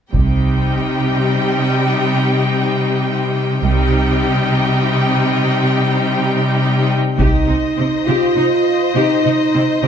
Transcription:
0.13 C2 C3 G3 D#4 G4 G5, taiko
3.64 C2 C3 G3 D#4 G4 G5
7.18 C2 C3 D#4 G4 C5 D#5, taiko
7.48 C3 D#4
7.77 C3 C4
8.06 C3 F4 G4
8.35 C3 D#4
8.96 C3 D#4 G4
9.24 C3 D#4
9.54 C3 C4
9.83 C3 G4

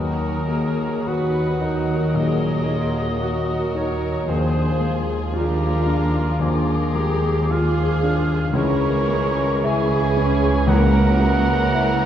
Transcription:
Already playing: D#2 F#3 D#4 F#4 A#4 D#6
0.49 A#3 F#4 G#4
1.07 D#4 F#4 B4 F#5
1.61 D#4 A#4
2.14 A#2 F#3 D#4 F#4 G#4 D#5
2.68 A#3 F4
3.22 F#4 A#4
3.75 D#4 A#4 C#5
4.28 D#2 F3 D4 F4 G#4 C5
4.81 G#3
5.34 D4 F4 G4 A#4 D6
5.86 D4 F4
6.39 D#2 F3 D4 F4 G#4 A#4
6.95 G#3 G4
7.50 F4 G#4 F5
8.03 D4
8.53 C#2 E3 G#3 C#4 E4 G#4 A#4 C#5 C#6
9.08 G#3
9.63 C#4 E4 G#4 G#5
10.17 C#4
10.67 C#2 A#3 C#4 E4 A#4 F#5 A#5
11.20 A#3 F#4
11.74 E4

